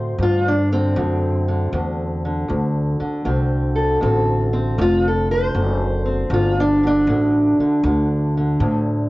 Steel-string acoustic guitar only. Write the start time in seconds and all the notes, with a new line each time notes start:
Already playing: D2 C4 C5
0.20 D2 F4
0.48 D4
0.72 D3 C4
0.96 D2 D3
1.48 D3
1.73 D2 D3
2.25 D3
2.48 D2
3.00 D3
3.25 D2 C4
3.76 A4
4.01 D2 C4 A4
4.53 C4
4.78 D2 F4
5.08 A4
5.31 C5
5.55 D2
6.06 C4
6.30 D2 F4
6.60 D4
6.83 D3 D4
7.08 D2 D3
7.60 D3
7.85 D2 D3
8.37 D3
8.61 D2